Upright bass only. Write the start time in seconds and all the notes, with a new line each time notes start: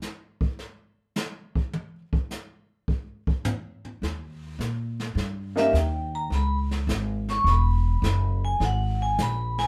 4.02 D#2
4.59 A#2
5.15 G2
5.73 D#2
6.30 C#2
6.87 G#1
7.44 E1
8.02 F#1
8.60 G#1
9.18 A#1